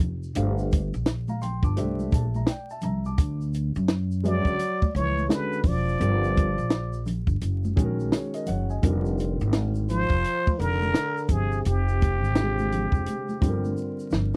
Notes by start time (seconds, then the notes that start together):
0.00 F1
0.23 shaker
0.35 G1 A3 D4 G4 C5 F5, closed hi-hat, shaker
0.58 shaker
0.72 kick, closed hi-hat, high conga, shaker
0.94 A#1, shaker
1.06 snare, closed hi-hat, shaker
1.28 F5 A#5, high conga, shaker
1.42 G5 C6, closed hi-hat, low conga, shaker
1.63 G1 A5 D6, kick, shaker
1.76 C2 A3 D4 G4 C5 E5, closed hi-hat, high conga, shaker
2.00 high conga, shaker
2.12 A#1 E5 A5, kick, closed hi-hat, low conga, shaker
2.34 E5 A#5, high conga, shaker
2.47 D5 G5, snare, closed hi-hat, shaker
2.70 E5 A5, shaker
2.81 C2 E5 A#5, closed hi-hat, low conga, shaker
3.05 A5 D6, shaker
3.18 D2, kick, closed hi-hat, shaker
3.41 shaker
3.54 closed hi-hat, shaker
3.76 F#2, shaker
3.88 snare, closed hi-hat, shaker
4.11 shaker
4.24 F#3 G#3 C#4 F#4 B4 D5 E5, closed hi-hat, low conga, shaker
4.45 D2, kick, shaker
4.59 closed hi-hat, shaker
4.82 kick, high conga, shaker
4.95 C#2 E3 C#5, closed hi-hat, low conga, shaker
5.18 high conga, shaker
5.29 G#3 C#4 F#4 B4 D5, snare, closed hi-hat, shaker
5.33 D3 B4
5.53 shaker
5.64 E1 D5, kick, open hi-hat, low conga, shaker
5.68 F3
5.88 shaker
5.99 G1 G3 C4 F4 A#4 D5, closed hi-hat, shaker
6.24 shaker
6.37 kick, closed hi-hat, shaker
6.58 A#1, shaker
6.70 snare, closed hi-hat, shaker
6.93 shaker
7.06 closed hi-hat, low conga, shaker
7.27 G1, kick, shaker
7.41 F#1, closed hi-hat, shaker
7.65 high conga, shaker
7.76 A#1 D#3 G#3 C#4 F#4 G#4, kick, closed hi-hat, low conga, shaker
7.84 A#4
8.00 high conga, shaker
8.12 G#4 C#5, snare, closed hi-hat, shaker
8.34 A#4 D#5, closed hi-hat, shaker
8.46 F#1 C#5 F#5, closed hi-hat, low conga, shaker
8.70 D#5 G#5, shaker
8.82 F1 D3 G3 C4 F4 A#4, kick, closed hi-hat, shaker
9.06 shaker
9.18 closed hi-hat, shaker
9.40 G#1, shaker
9.53 snare, closed hi-hat, shaker
9.75 shaker
9.89 F3 C5, closed hi-hat, low conga, shaker
10.10 F1, kick, shaker
10.24 closed hi-hat, shaker
10.47 kick, high conga, shaker
10.59 F1 D3 A#4, closed hi-hat, low conga, shaker
10.82 high conga, shaker
10.94 snare, closed hi-hat, shaker
11.17 shaker
11.29 G1 C3 G#4, kick, closed hi-hat, low conga, shaker
11.52 shaker
11.65 F1 C3 G4, closed hi-hat, shaker
11.88 shaker
12.01 kick, closed hi-hat, high conga, shaker
12.24 G#1, shaker
12.35 D3 C4 F4 G4, snare, closed hi-hat, shaker
12.43 G#3
12.59 high conga, shaker
12.72 closed hi-hat, low conga, shaker
12.92 F1, kick, shaker
13.06 closed hi-hat, high conga, shaker
13.29 high conga, shaker
13.41 G1 D3 G3 C4 F4 A4, kick, closed hi-hat, low conga, shaker
13.49 A#4
13.65 high conga, shaker
13.77 shaker
13.99 shaker
14.11 G1, snare, low conga, shaker